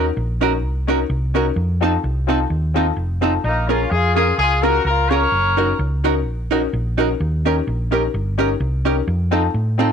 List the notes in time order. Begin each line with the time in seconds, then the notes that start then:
0.17 A#1
0.41 C#4 D#4 F#4 A#4
0.63 C2
0.87 C#4 D#4 F#4 A#4
1.10 C2
1.34 C#4 D#4 F#4 A#4
1.56 F2
1.81 C4 D#4 F4 A4
2.04 C2
2.27 C4 D#4 F4 A4
2.50 D#2
2.74 C4 D#4 F4 A4
2.96 F1
3.21 C4 D#4 F4 A4
3.44 A#1 A#3 D#4
3.68 C#4 F4 G#4 A#4
3.91 F2 F4 G#4
4.15 C#4 F4 G#4 A#4
4.38 C#2 F4 G#4
4.62 C#4 F4 F#4 G#4 A#4
4.85 C#2 F4 A#4
5.09 C#4 F4 G#4 A#4 C#5
5.32 F#1
5.57 C#4 D#4 F#4 A#4
5.79 C#2
6.04 C#4 D#4 F#4 A#4
6.26 A#1
6.51 C#4 D#4 F#4 A#4
6.73 A#1
6.97 C#4 D#4 F#4 A#4
7.20 D#2
7.45 C#4 D#4 G4 A#4
7.67 A#1
7.91 C#4 D#4 G4 A#4
8.14 G1
8.38 C#4 D#4 G4 A#4
8.60 C2
8.85 C#4 D#4 G4 A#4
9.07 F2
9.31 C4 D#4 F4 A4
9.54 A2
9.78 C4 D#4 F4 A4